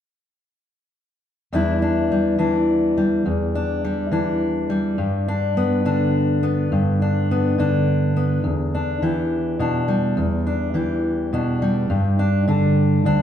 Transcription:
1.53 3.22 E2 medium
1.53 2.38 E3 soft
1.53 2.11 G3 soft
1.53 1.82 D4 soft
1.53 3.23 E4 soft
1.82 2.39 D4 soft
2.12 2.97 G3 soft
2.38 3.22 E3 soft
2.38 3.29 D4 soft
2.97 3.84 G3 soft
3.26 4.95 E2 medium
3.55 4.12 D4 soft
3.84 4.69 G3 soft
4.11 4.95 E3 soft
4.11 5.28 D4 soft
4.70 5.57 G3 soft
4.98 6.71 G2 medium
5.28 5.85 D4 medium
5.57 6.43 B3 soft
5.85 7.57 D3 soft
5.85 7.02 D4 medium
6.43 7.31 B3 soft
6.72 8.45 G2 medium
7.02 7.58 D4 medium
7.31 8.15 B3 soft
7.58 9.02 D3 soft
7.58 8.42 D4 medium
8.17 8.41 B3 soft
8.44 10.14 E2 medium
8.75 9.60 D4 soft
9.02 10.14 E3 soft
9.02 10.74 G4 soft
9.59 10.14 B2 soft
9.59 10.20 D4 soft
9.88 11.62 G3 soft
10.17 11.87 E2 medium
10.47 11.33 D4 soft
10.74 11.86 E3 soft
10.74 13.22 G4 soft
11.33 11.87 B2 soft
11.33 12.19 D4 soft
11.62 13.22 G3 soft
11.90 13.05 G2 medium
12.19 12.48 D4 medium
12.48 13.22 D3 medium
12.48 13.05 D4 soft
13.05 13.22 D2 medium
13.05 13.22 D4 medium

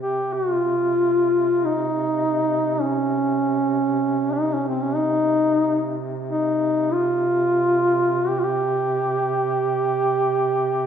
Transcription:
0.00 10.87 C3 soft
0.00 0.35 G4 medium
0.33 0.52 F#4 medium
0.52 1.66 F4 medium
1.65 2.83 D#4 medium
2.81 4.34 C#4 medium
4.33 4.55 D#4 medium
4.54 4.67 C#4 medium
4.68 4.83 C4 medium
4.81 4.97 C#4 medium
4.96 5.97 D#4 medium
6.29 6.94 D#4 medium
6.92 8.29 F4 medium
8.28 8.41 G4 medium
8.39 8.45 F4 medium
8.44 10.87 G4 medium

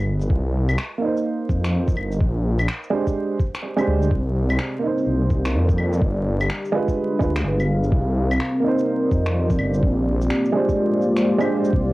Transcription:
0.00 0.29 G1 medium
0.21 shaker medium
0.30 0.77 C2 loud
0.30 kick loud
0.69 claves medium
0.69 shaker medium
0.78 finger snap loud
0.98 2.18 A#3 medium
0.98 2.20 D#4 medium
1.06 2.22 C5 medium
1.17 shaker soft
1.49 1.96 F2 medium
1.49 kick loud
1.49 shaker soft
1.64 finger snap loud
1.64 shaker medium
1.88 kick loud
1.88 shaker soft
1.97 2.19 G1 medium
1.97 claves soft
2.12 shaker medium
2.21 2.67 A#1 loud
2.21 kick loud
2.59 claves medium
2.59 shaker medium
2.68 finger snap loud
2.84 shaker soft
2.90 3.37 G#3 medium
2.90 3.37 D4 medium
2.90 3.38 G4 medium
2.90 3.39 C5 medium
3.07 kick medium
3.07 shaker soft
3.40 kick loud
3.40 shaker soft
3.55 finger snap loud
3.55 shaker medium
3.77 4.09 G#3 medium
3.77 4.10 D4 medium
3.77 4.11 G4 medium
3.77 4.11 C5 loud
3.77 claves soft
3.77 shaker soft
3.88 4.10 D2 loud
4.02 shaker medium
4.11 4.58 C2 loud
4.11 6.02 C4 medium
4.11 kick loud
4.50 claves medium
4.50 shaker medium
4.59 6.00 G4 medium
4.59 finger snap medium
4.79 5.99 A#3 medium
4.79 6.01 A#4 medium
4.79 6.79 D5 medium
4.83 6.01 D#4 medium
4.83 6.03 C5 medium
4.98 6.01 D#5 medium
4.98 shaker soft
5.06 5.56 C2 medium
5.30 kick loud
5.30 shaker soft
5.45 finger snap loud
5.45 shaker medium
5.54 6.01 F2 loud
5.69 kick loud
5.69 shaker soft
5.78 claves soft
5.93 shaker medium
6.01 6.48 G1 loud
6.01 7.92 G4 medium
6.01 kick loud
6.41 claves medium
6.41 shaker soft
6.50 7.92 D4 medium
6.50 finger snap medium
6.65 shaker soft
6.69 7.18 G#3 medium
6.69 8.70 F5 medium
6.74 7.19 F4 medium
6.74 7.20 B4 medium
6.88 7.92 G#4 medium
6.88 7.93 B4 medium
6.88 kick medium
6.88 shaker soft
7.19 7.43 D2 medium
7.19 7.29 G#3 medium
7.19 7.30 F4 medium
7.19 7.31 B4 medium
7.19 kick loud
7.19 shaker soft
7.36 finger snap loud
7.36 shaker medium
7.44 7.91 G1 medium
7.60 claves soft
7.60 shaker soft
7.84 shaker medium
7.92 8.39 C2 loud
7.92 10.60 C4 medium
7.92 kick loud
8.17 10.59 A#4 medium
8.21 11.93 G4 medium
8.31 claves medium
8.31 shaker medium
8.40 finger snap medium
8.60 9.80 A#3 medium
8.60 9.82 D#4 medium
8.68 9.84 C5 medium
8.78 11.93 D5 medium
8.78 9.83 D#5 medium
8.78 shaker soft
9.11 9.58 F2 medium
9.11 kick loud
9.11 shaker soft
9.26 finger snap loud
9.26 shaker medium
9.50 kick loud
9.50 shaker soft
9.59 9.81 G1 medium
9.59 claves soft
9.74 shaker medium
9.83 10.29 A#1 loud
9.83 11.93 A#3 medium
9.83 kick loud
9.95 11.93 F4 medium
10.21 11.73 G#3 medium
10.21 shaker medium
10.30 finger snap loud
10.45 shaker soft
10.52 10.99 G#3 medium
10.52 10.99 D4 medium
10.52 11.00 G4 medium
10.52 11.01 C5 medium
10.69 11.93 C5 medium
10.69 kick medium
10.69 shaker medium
11.02 shaker soft
11.17 finger snap loud
11.17 shaker medium
11.39 11.71 G#3 medium
11.39 11.72 D4 medium
11.39 11.72 G4 medium
11.39 11.73 C5 loud
11.39 claves soft
11.39 shaker soft
11.65 shaker medium
11.73 11.93 C2 loud
11.73 11.93 C4 medium
11.73 kick loud

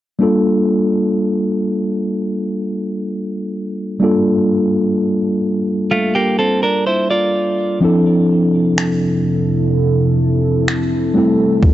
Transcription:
0.19 3.96 G3 medium
0.19 3.97 A#3 medium
0.19 3.97 D4 medium
0.19 3.98 F4 medium
0.23 3.98 A4 medium
4.00 7.77 G3 medium
4.00 7.78 A#3 medium
4.00 7.78 D4 medium
4.00 7.79 F4 medium
4.04 7.79 A4 medium
5.91 6.14 A3 medium
5.91 6.14 F4 medium
6.15 6.38 A#3 medium
6.15 6.38 G4 medium
6.39 6.62 C4 medium
6.39 6.61 A4 medium
6.63 6.86 D4 medium
6.63 6.85 A#4 medium
6.87 7.09 E4 medium
6.87 7.09 C5 medium
7.11 7.79 F4 medium
7.11 7.78 D5 medium
7.80 11.12 F2 medium
7.80 11.12 C3 medium
7.80 11.10 F3 medium
7.80 11.11 C4 medium
7.80 11.11 D4 medium
7.80 11.12 E4 medium
7.80 11.12 A4 medium
7.85 11.13 A4 medium
8.78 finger snap loud
10.68 finger snap loud
11.14 11.74 A2 medium
11.14 11.74 G3 medium
11.14 11.74 A3 medium
11.14 11.74 C4 medium
11.14 11.74 E4 medium
11.14 11.74 A4 medium
11.18 11.74 A4 medium
11.63 kick medium

